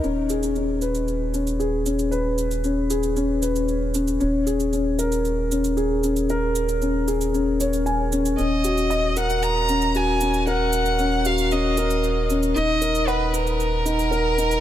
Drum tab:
SH |x-xxx-xxx-xxx-xx|x-xxx-xxx-xxx-xx|x-xxx-xxx-xxx-xx|x-xxx-xxx-xxx-xx|

SH |x-xxx-xxx-xxx-xx|x-xxx-xxx-xxx-xx|x-xxx-xxx-xxx-xx|